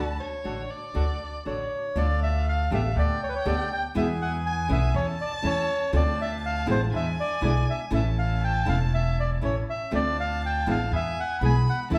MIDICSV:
0, 0, Header, 1, 6, 480
1, 0, Start_track
1, 0, Key_signature, -1, "minor"
1, 0, Tempo, 498339
1, 1890, Time_signature, 4, 2, 24, 8
1, 11545, End_track
2, 0, Start_track
2, 0, Title_t, "Violin"
2, 0, Program_c, 0, 40
2, 0, Note_on_c, 0, 81, 65
2, 192, Note_on_c, 0, 73, 66
2, 207, Note_off_c, 0, 81, 0
2, 674, Note_on_c, 0, 74, 69
2, 689, Note_off_c, 0, 73, 0
2, 1648, Note_off_c, 0, 74, 0
2, 1889, Note_on_c, 0, 77, 74
2, 2861, Note_on_c, 0, 79, 97
2, 2876, Note_off_c, 0, 77, 0
2, 3814, Note_on_c, 0, 80, 91
2, 3829, Note_off_c, 0, 79, 0
2, 4766, Note_on_c, 0, 81, 125
2, 4781, Note_off_c, 0, 80, 0
2, 5706, Note_off_c, 0, 81, 0
2, 5712, Note_on_c, 0, 81, 99
2, 6626, Note_off_c, 0, 81, 0
2, 6666, Note_on_c, 0, 80, 108
2, 7613, Note_on_c, 0, 81, 93
2, 7628, Note_off_c, 0, 80, 0
2, 9312, Note_off_c, 0, 81, 0
2, 9556, Note_on_c, 0, 81, 89
2, 10526, Note_on_c, 0, 80, 95
2, 10541, Note_off_c, 0, 81, 0
2, 10990, Note_off_c, 0, 80, 0
2, 10995, Note_on_c, 0, 83, 94
2, 11440, Note_off_c, 0, 83, 0
2, 11473, Note_on_c, 0, 81, 96
2, 11545, Note_off_c, 0, 81, 0
2, 11545, End_track
3, 0, Start_track
3, 0, Title_t, "Bandoneon"
3, 0, Program_c, 1, 23
3, 1413, Note_on_c, 1, 73, 65
3, 1903, Note_on_c, 1, 74, 81
3, 1909, Note_off_c, 1, 73, 0
3, 2122, Note_off_c, 1, 74, 0
3, 2149, Note_on_c, 1, 76, 81
3, 2365, Note_off_c, 1, 76, 0
3, 2395, Note_on_c, 1, 77, 83
3, 2608, Note_off_c, 1, 77, 0
3, 2640, Note_on_c, 1, 76, 80
3, 2850, Note_off_c, 1, 76, 0
3, 2877, Note_on_c, 1, 74, 81
3, 3088, Note_off_c, 1, 74, 0
3, 3118, Note_on_c, 1, 73, 76
3, 3161, Note_off_c, 1, 73, 0
3, 3170, Note_on_c, 1, 71, 61
3, 3220, Note_off_c, 1, 71, 0
3, 3232, Note_on_c, 1, 73, 75
3, 3334, Note_off_c, 1, 73, 0
3, 3348, Note_on_c, 1, 74, 79
3, 3562, Note_off_c, 1, 74, 0
3, 3589, Note_on_c, 1, 79, 88
3, 3692, Note_off_c, 1, 79, 0
3, 3828, Note_on_c, 1, 76, 85
3, 3931, Note_off_c, 1, 76, 0
3, 4063, Note_on_c, 1, 78, 89
3, 4167, Note_off_c, 1, 78, 0
3, 4297, Note_on_c, 1, 80, 90
3, 4513, Note_off_c, 1, 80, 0
3, 4548, Note_on_c, 1, 76, 84
3, 4758, Note_off_c, 1, 76, 0
3, 4775, Note_on_c, 1, 73, 84
3, 4879, Note_off_c, 1, 73, 0
3, 5021, Note_on_c, 1, 74, 77
3, 5124, Note_off_c, 1, 74, 0
3, 5264, Note_on_c, 1, 73, 88
3, 5695, Note_off_c, 1, 73, 0
3, 5742, Note_on_c, 1, 74, 94
3, 5972, Note_off_c, 1, 74, 0
3, 5986, Note_on_c, 1, 76, 86
3, 6085, Note_off_c, 1, 76, 0
3, 6220, Note_on_c, 1, 77, 93
3, 6427, Note_off_c, 1, 77, 0
3, 6463, Note_on_c, 1, 72, 82
3, 6563, Note_off_c, 1, 72, 0
3, 6701, Note_on_c, 1, 76, 81
3, 6801, Note_off_c, 1, 76, 0
3, 6937, Note_on_c, 1, 74, 91
3, 7145, Note_off_c, 1, 74, 0
3, 7172, Note_on_c, 1, 74, 82
3, 7382, Note_off_c, 1, 74, 0
3, 7418, Note_on_c, 1, 76, 83
3, 7519, Note_off_c, 1, 76, 0
3, 7652, Note_on_c, 1, 76, 87
3, 7755, Note_off_c, 1, 76, 0
3, 7884, Note_on_c, 1, 77, 81
3, 8122, Note_off_c, 1, 77, 0
3, 8131, Note_on_c, 1, 79, 83
3, 8344, Note_off_c, 1, 79, 0
3, 8366, Note_on_c, 1, 77, 90
3, 8470, Note_off_c, 1, 77, 0
3, 8614, Note_on_c, 1, 76, 94
3, 8851, Note_off_c, 1, 76, 0
3, 8859, Note_on_c, 1, 74, 78
3, 8962, Note_off_c, 1, 74, 0
3, 9100, Note_on_c, 1, 73, 86
3, 9203, Note_off_c, 1, 73, 0
3, 9341, Note_on_c, 1, 76, 92
3, 9555, Note_off_c, 1, 76, 0
3, 9584, Note_on_c, 1, 74, 99
3, 9797, Note_off_c, 1, 74, 0
3, 9827, Note_on_c, 1, 77, 94
3, 10039, Note_off_c, 1, 77, 0
3, 10072, Note_on_c, 1, 79, 85
3, 10281, Note_off_c, 1, 79, 0
3, 10312, Note_on_c, 1, 77, 93
3, 10521, Note_off_c, 1, 77, 0
3, 10553, Note_on_c, 1, 76, 97
3, 10783, Note_off_c, 1, 76, 0
3, 10790, Note_on_c, 1, 78, 91
3, 10998, Note_off_c, 1, 78, 0
3, 11032, Note_on_c, 1, 80, 90
3, 11132, Note_off_c, 1, 80, 0
3, 11264, Note_on_c, 1, 78, 96
3, 11365, Note_off_c, 1, 78, 0
3, 11505, Note_on_c, 1, 76, 106
3, 11545, Note_off_c, 1, 76, 0
3, 11545, End_track
4, 0, Start_track
4, 0, Title_t, "Bandoneon"
4, 0, Program_c, 2, 23
4, 0, Note_on_c, 2, 62, 71
4, 0, Note_on_c, 2, 66, 59
4, 0, Note_on_c, 2, 69, 69
4, 153, Note_off_c, 2, 62, 0
4, 154, Note_off_c, 2, 66, 0
4, 155, Note_off_c, 2, 69, 0
4, 432, Note_on_c, 2, 66, 43
4, 433, Note_on_c, 2, 62, 43
4, 436, Note_on_c, 2, 69, 53
4, 635, Note_off_c, 2, 62, 0
4, 635, Note_off_c, 2, 66, 0
4, 637, Note_off_c, 2, 69, 0
4, 912, Note_on_c, 2, 62, 65
4, 913, Note_on_c, 2, 66, 53
4, 915, Note_on_c, 2, 69, 70
4, 1118, Note_off_c, 2, 62, 0
4, 1118, Note_off_c, 2, 66, 0
4, 1120, Note_off_c, 2, 69, 0
4, 1398, Note_on_c, 2, 62, 37
4, 1400, Note_on_c, 2, 66, 34
4, 1402, Note_on_c, 2, 69, 39
4, 1606, Note_off_c, 2, 62, 0
4, 1607, Note_off_c, 2, 66, 0
4, 1608, Note_off_c, 2, 69, 0
4, 1885, Note_on_c, 2, 62, 88
4, 1888, Note_on_c, 2, 65, 81
4, 1890, Note_on_c, 2, 69, 99
4, 2575, Note_off_c, 2, 62, 0
4, 2576, Note_off_c, 2, 65, 0
4, 2577, Note_off_c, 2, 69, 0
4, 2610, Note_on_c, 2, 62, 67
4, 2612, Note_on_c, 2, 65, 59
4, 2614, Note_on_c, 2, 69, 70
4, 2813, Note_off_c, 2, 62, 0
4, 2814, Note_off_c, 2, 65, 0
4, 2815, Note_off_c, 2, 69, 0
4, 2845, Note_on_c, 2, 59, 73
4, 2848, Note_on_c, 2, 67, 70
4, 2849, Note_on_c, 2, 69, 83
4, 3049, Note_off_c, 2, 59, 0
4, 3051, Note_off_c, 2, 67, 0
4, 3051, Note_off_c, 2, 69, 0
4, 3326, Note_on_c, 2, 59, 70
4, 3326, Note_on_c, 2, 67, 64
4, 3327, Note_on_c, 2, 69, 82
4, 3529, Note_off_c, 2, 59, 0
4, 3529, Note_off_c, 2, 67, 0
4, 3530, Note_off_c, 2, 69, 0
4, 3803, Note_on_c, 2, 59, 85
4, 3804, Note_on_c, 2, 64, 83
4, 3808, Note_on_c, 2, 68, 92
4, 4485, Note_off_c, 2, 59, 0
4, 4486, Note_off_c, 2, 64, 0
4, 4488, Note_off_c, 2, 68, 0
4, 4519, Note_on_c, 2, 59, 79
4, 4523, Note_on_c, 2, 64, 66
4, 4525, Note_on_c, 2, 68, 82
4, 4721, Note_off_c, 2, 59, 0
4, 4723, Note_off_c, 2, 64, 0
4, 4724, Note_off_c, 2, 68, 0
4, 4755, Note_on_c, 2, 61, 79
4, 4757, Note_on_c, 2, 64, 74
4, 4758, Note_on_c, 2, 69, 80
4, 4958, Note_off_c, 2, 61, 0
4, 4959, Note_off_c, 2, 64, 0
4, 4959, Note_off_c, 2, 69, 0
4, 5233, Note_on_c, 2, 61, 75
4, 5235, Note_on_c, 2, 64, 70
4, 5237, Note_on_c, 2, 69, 84
4, 5436, Note_off_c, 2, 61, 0
4, 5437, Note_off_c, 2, 64, 0
4, 5438, Note_off_c, 2, 69, 0
4, 5710, Note_on_c, 2, 60, 90
4, 5713, Note_on_c, 2, 62, 77
4, 5715, Note_on_c, 2, 65, 104
4, 6389, Note_off_c, 2, 60, 0
4, 6391, Note_off_c, 2, 62, 0
4, 6392, Note_off_c, 2, 65, 0
4, 6424, Note_on_c, 2, 60, 67
4, 6425, Note_on_c, 2, 62, 66
4, 6427, Note_on_c, 2, 65, 80
4, 6626, Note_off_c, 2, 60, 0
4, 6626, Note_off_c, 2, 62, 0
4, 6627, Note_off_c, 2, 65, 0
4, 6662, Note_on_c, 2, 56, 69
4, 6664, Note_on_c, 2, 62, 66
4, 6667, Note_on_c, 2, 64, 92
4, 6865, Note_off_c, 2, 56, 0
4, 6866, Note_off_c, 2, 62, 0
4, 6867, Note_off_c, 2, 64, 0
4, 7136, Note_on_c, 2, 56, 77
4, 7140, Note_on_c, 2, 62, 73
4, 7140, Note_on_c, 2, 64, 81
4, 7341, Note_off_c, 2, 56, 0
4, 7344, Note_off_c, 2, 62, 0
4, 7344, Note_off_c, 2, 64, 0
4, 7622, Note_on_c, 2, 57, 93
4, 7624, Note_on_c, 2, 61, 75
4, 7626, Note_on_c, 2, 64, 95
4, 8309, Note_off_c, 2, 57, 0
4, 8310, Note_off_c, 2, 61, 0
4, 8312, Note_off_c, 2, 64, 0
4, 8346, Note_on_c, 2, 61, 68
4, 8347, Note_on_c, 2, 57, 76
4, 8349, Note_on_c, 2, 64, 80
4, 9038, Note_off_c, 2, 57, 0
4, 9038, Note_off_c, 2, 61, 0
4, 9039, Note_off_c, 2, 64, 0
4, 9066, Note_on_c, 2, 57, 71
4, 9067, Note_on_c, 2, 61, 67
4, 9070, Note_on_c, 2, 64, 87
4, 9275, Note_off_c, 2, 57, 0
4, 9275, Note_off_c, 2, 61, 0
4, 9277, Note_off_c, 2, 64, 0
4, 9555, Note_on_c, 2, 60, 82
4, 9555, Note_on_c, 2, 62, 74
4, 9560, Note_on_c, 2, 65, 89
4, 10244, Note_off_c, 2, 60, 0
4, 10244, Note_off_c, 2, 62, 0
4, 10246, Note_off_c, 2, 65, 0
4, 10276, Note_on_c, 2, 62, 63
4, 10277, Note_on_c, 2, 60, 66
4, 10280, Note_on_c, 2, 65, 71
4, 10480, Note_off_c, 2, 62, 0
4, 10481, Note_off_c, 2, 60, 0
4, 10483, Note_off_c, 2, 65, 0
4, 10519, Note_on_c, 2, 59, 74
4, 10522, Note_on_c, 2, 64, 67
4, 10523, Note_on_c, 2, 68, 79
4, 10721, Note_off_c, 2, 59, 0
4, 10722, Note_off_c, 2, 64, 0
4, 10723, Note_off_c, 2, 68, 0
4, 11000, Note_on_c, 2, 59, 76
4, 11002, Note_on_c, 2, 64, 67
4, 11005, Note_on_c, 2, 68, 73
4, 11200, Note_off_c, 2, 59, 0
4, 11201, Note_off_c, 2, 64, 0
4, 11203, Note_off_c, 2, 68, 0
4, 11474, Note_on_c, 2, 61, 97
4, 11478, Note_on_c, 2, 64, 81
4, 11480, Note_on_c, 2, 69, 104
4, 11545, Note_off_c, 2, 61, 0
4, 11545, Note_off_c, 2, 64, 0
4, 11545, Note_off_c, 2, 69, 0
4, 11545, End_track
5, 0, Start_track
5, 0, Title_t, "Nylon-string guitar"
5, 0, Program_c, 3, 24
5, 425, Note_on_c, 3, 50, 57
5, 428, Note_on_c, 3, 57, 58
5, 430, Note_on_c, 3, 62, 64
5, 434, Note_on_c, 3, 66, 62
5, 592, Note_off_c, 3, 50, 0
5, 594, Note_off_c, 3, 57, 0
5, 595, Note_off_c, 3, 62, 0
5, 597, Note_off_c, 3, 66, 0
5, 905, Note_on_c, 3, 50, 65
5, 912, Note_on_c, 3, 57, 70
5, 912, Note_on_c, 3, 62, 78
5, 914, Note_on_c, 3, 66, 77
5, 997, Note_off_c, 3, 50, 0
5, 1001, Note_off_c, 3, 57, 0
5, 1001, Note_off_c, 3, 62, 0
5, 1002, Note_off_c, 3, 66, 0
5, 1399, Note_on_c, 3, 50, 45
5, 1401, Note_on_c, 3, 57, 42
5, 1406, Note_on_c, 3, 62, 57
5, 1407, Note_on_c, 3, 66, 47
5, 1567, Note_off_c, 3, 50, 0
5, 1568, Note_off_c, 3, 57, 0
5, 1570, Note_off_c, 3, 62, 0
5, 1571, Note_off_c, 3, 66, 0
5, 1886, Note_on_c, 3, 50, 89
5, 1891, Note_on_c, 3, 57, 80
5, 1897, Note_on_c, 3, 62, 87
5, 1898, Note_on_c, 3, 65, 100
5, 1975, Note_off_c, 3, 50, 0
5, 1978, Note_off_c, 3, 57, 0
5, 1981, Note_off_c, 3, 62, 0
5, 1981, Note_off_c, 3, 65, 0
5, 2607, Note_on_c, 3, 50, 85
5, 2616, Note_on_c, 3, 57, 85
5, 2620, Note_on_c, 3, 59, 90
5, 2621, Note_on_c, 3, 67, 86
5, 2696, Note_off_c, 3, 50, 0
5, 2701, Note_off_c, 3, 57, 0
5, 2703, Note_off_c, 3, 59, 0
5, 2703, Note_off_c, 3, 67, 0
5, 3325, Note_on_c, 3, 50, 67
5, 3327, Note_on_c, 3, 57, 86
5, 3330, Note_on_c, 3, 59, 81
5, 3333, Note_on_c, 3, 67, 84
5, 3414, Note_off_c, 3, 50, 0
5, 3415, Note_off_c, 3, 57, 0
5, 3416, Note_off_c, 3, 59, 0
5, 3418, Note_off_c, 3, 67, 0
5, 3803, Note_on_c, 3, 47, 96
5, 3804, Note_on_c, 3, 52, 86
5, 3807, Note_on_c, 3, 56, 89
5, 3810, Note_on_c, 3, 59, 92
5, 3813, Note_on_c, 3, 64, 97
5, 3892, Note_off_c, 3, 47, 0
5, 3892, Note_off_c, 3, 52, 0
5, 3894, Note_off_c, 3, 56, 0
5, 3895, Note_off_c, 3, 59, 0
5, 3897, Note_off_c, 3, 64, 0
5, 4512, Note_on_c, 3, 52, 79
5, 4515, Note_on_c, 3, 57, 84
5, 4522, Note_on_c, 3, 61, 89
5, 4523, Note_on_c, 3, 64, 89
5, 4604, Note_off_c, 3, 52, 0
5, 4605, Note_off_c, 3, 57, 0
5, 4609, Note_off_c, 3, 61, 0
5, 4609, Note_off_c, 3, 64, 0
5, 5223, Note_on_c, 3, 52, 79
5, 5228, Note_on_c, 3, 57, 77
5, 5233, Note_on_c, 3, 61, 89
5, 5233, Note_on_c, 3, 64, 86
5, 5316, Note_off_c, 3, 52, 0
5, 5319, Note_off_c, 3, 57, 0
5, 5321, Note_off_c, 3, 61, 0
5, 5321, Note_off_c, 3, 64, 0
5, 5707, Note_on_c, 3, 50, 84
5, 5709, Note_on_c, 3, 57, 90
5, 5712, Note_on_c, 3, 60, 98
5, 5715, Note_on_c, 3, 65, 97
5, 5796, Note_off_c, 3, 50, 0
5, 5797, Note_off_c, 3, 57, 0
5, 5799, Note_off_c, 3, 60, 0
5, 5800, Note_off_c, 3, 65, 0
5, 6414, Note_on_c, 3, 47, 86
5, 6419, Note_on_c, 3, 50, 85
5, 6421, Note_on_c, 3, 59, 86
5, 6423, Note_on_c, 3, 56, 91
5, 6426, Note_on_c, 3, 64, 98
5, 6507, Note_off_c, 3, 47, 0
5, 6509, Note_off_c, 3, 50, 0
5, 6510, Note_off_c, 3, 59, 0
5, 6511, Note_off_c, 3, 56, 0
5, 6512, Note_off_c, 3, 64, 0
5, 7137, Note_on_c, 3, 47, 75
5, 7142, Note_on_c, 3, 50, 77
5, 7143, Note_on_c, 3, 56, 72
5, 7146, Note_on_c, 3, 59, 86
5, 7149, Note_on_c, 3, 64, 89
5, 7227, Note_off_c, 3, 47, 0
5, 7229, Note_off_c, 3, 50, 0
5, 7230, Note_off_c, 3, 56, 0
5, 7231, Note_off_c, 3, 59, 0
5, 7233, Note_off_c, 3, 64, 0
5, 7615, Note_on_c, 3, 52, 98
5, 7618, Note_on_c, 3, 57, 87
5, 7624, Note_on_c, 3, 61, 98
5, 7626, Note_on_c, 3, 64, 102
5, 7707, Note_off_c, 3, 52, 0
5, 7708, Note_off_c, 3, 57, 0
5, 7711, Note_off_c, 3, 61, 0
5, 7712, Note_off_c, 3, 64, 0
5, 8335, Note_on_c, 3, 52, 84
5, 8343, Note_on_c, 3, 57, 83
5, 8345, Note_on_c, 3, 64, 96
5, 8346, Note_on_c, 3, 61, 99
5, 8428, Note_off_c, 3, 52, 0
5, 8432, Note_off_c, 3, 57, 0
5, 8433, Note_off_c, 3, 61, 0
5, 8433, Note_off_c, 3, 64, 0
5, 9068, Note_on_c, 3, 52, 67
5, 9070, Note_on_c, 3, 57, 78
5, 9077, Note_on_c, 3, 61, 73
5, 9080, Note_on_c, 3, 64, 74
5, 9159, Note_off_c, 3, 52, 0
5, 9160, Note_off_c, 3, 57, 0
5, 9164, Note_off_c, 3, 61, 0
5, 9165, Note_off_c, 3, 64, 0
5, 9546, Note_on_c, 3, 50, 77
5, 9550, Note_on_c, 3, 57, 88
5, 9553, Note_on_c, 3, 60, 94
5, 9557, Note_on_c, 3, 65, 86
5, 9639, Note_off_c, 3, 50, 0
5, 9641, Note_off_c, 3, 57, 0
5, 9643, Note_off_c, 3, 60, 0
5, 9645, Note_off_c, 3, 65, 0
5, 10270, Note_on_c, 3, 47, 77
5, 10271, Note_on_c, 3, 52, 82
5, 10276, Note_on_c, 3, 56, 84
5, 10277, Note_on_c, 3, 59, 93
5, 10282, Note_on_c, 3, 64, 90
5, 10362, Note_off_c, 3, 47, 0
5, 10363, Note_off_c, 3, 52, 0
5, 10365, Note_off_c, 3, 56, 0
5, 10366, Note_off_c, 3, 59, 0
5, 10368, Note_off_c, 3, 64, 0
5, 10993, Note_on_c, 3, 47, 67
5, 10993, Note_on_c, 3, 52, 79
5, 10998, Note_on_c, 3, 56, 74
5, 11001, Note_on_c, 3, 59, 79
5, 11001, Note_on_c, 3, 64, 89
5, 11082, Note_off_c, 3, 47, 0
5, 11082, Note_off_c, 3, 52, 0
5, 11085, Note_off_c, 3, 56, 0
5, 11086, Note_off_c, 3, 59, 0
5, 11086, Note_off_c, 3, 64, 0
5, 11463, Note_on_c, 3, 52, 91
5, 11470, Note_on_c, 3, 57, 86
5, 11472, Note_on_c, 3, 61, 96
5, 11476, Note_on_c, 3, 64, 94
5, 11545, Note_off_c, 3, 52, 0
5, 11545, Note_off_c, 3, 57, 0
5, 11545, Note_off_c, 3, 61, 0
5, 11545, Note_off_c, 3, 64, 0
5, 11545, End_track
6, 0, Start_track
6, 0, Title_t, "Upright bass"
6, 0, Program_c, 4, 32
6, 0, Note_on_c, 4, 38, 83
6, 157, Note_off_c, 4, 38, 0
6, 438, Note_on_c, 4, 33, 45
6, 638, Note_off_c, 4, 33, 0
6, 921, Note_on_c, 4, 38, 76
6, 1123, Note_off_c, 4, 38, 0
6, 1402, Note_on_c, 4, 33, 48
6, 1608, Note_off_c, 4, 33, 0
6, 1884, Note_on_c, 4, 38, 92
6, 2574, Note_off_c, 4, 38, 0
6, 2610, Note_on_c, 4, 33, 85
6, 2813, Note_off_c, 4, 33, 0
6, 2850, Note_on_c, 4, 38, 97
6, 3052, Note_off_c, 4, 38, 0
6, 3328, Note_on_c, 4, 38, 83
6, 3530, Note_off_c, 4, 38, 0
6, 3809, Note_on_c, 4, 40, 91
6, 4488, Note_off_c, 4, 40, 0
6, 4528, Note_on_c, 4, 35, 90
6, 4725, Note_off_c, 4, 35, 0
6, 4763, Note_on_c, 4, 40, 94
6, 4962, Note_off_c, 4, 40, 0
6, 5237, Note_on_c, 4, 40, 89
6, 5438, Note_off_c, 4, 40, 0
6, 5710, Note_on_c, 4, 38, 98
6, 6389, Note_off_c, 4, 38, 0
6, 6431, Note_on_c, 4, 33, 86
6, 6630, Note_off_c, 4, 33, 0
6, 6672, Note_on_c, 4, 40, 86
6, 6870, Note_off_c, 4, 40, 0
6, 7147, Note_on_c, 4, 35, 89
6, 7347, Note_off_c, 4, 35, 0
6, 7620, Note_on_c, 4, 33, 89
6, 8308, Note_off_c, 4, 33, 0
6, 8346, Note_on_c, 4, 28, 86
6, 9038, Note_off_c, 4, 28, 0
6, 9072, Note_on_c, 4, 33, 82
6, 9278, Note_off_c, 4, 33, 0
6, 9557, Note_on_c, 4, 38, 84
6, 10245, Note_off_c, 4, 38, 0
6, 10277, Note_on_c, 4, 33, 84
6, 10481, Note_off_c, 4, 33, 0
6, 10514, Note_on_c, 4, 40, 96
6, 10718, Note_off_c, 4, 40, 0
6, 10990, Note_on_c, 4, 35, 91
6, 11195, Note_off_c, 4, 35, 0
6, 11471, Note_on_c, 4, 40, 91
6, 11545, Note_off_c, 4, 40, 0
6, 11545, End_track
0, 0, End_of_file